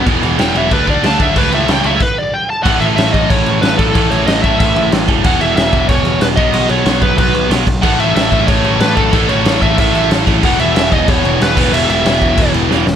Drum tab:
CC |xxxxxxxx|xxxxx---|xxxxxxxx|xxxxxxxx|
SD |--o---o-|--o-----|--o---o-|--o---o-|
BD |o---oo-o|o---o---|o--oo--o|o--oo--o|

CC |xxxxxxxx|xxxxxxxx|xxxxxxxx|xxxxxxxx|
SD |--o---o-|--o---o-|--o---o-|--o---o-|
BD |o--oo--o|---oo--o|o--oo--o|o--oo--o|

CC |xxxxxxxx|xxxxxx--|
SD |--o---o-|--o---oo|
BD |o--oo--o|---oo---|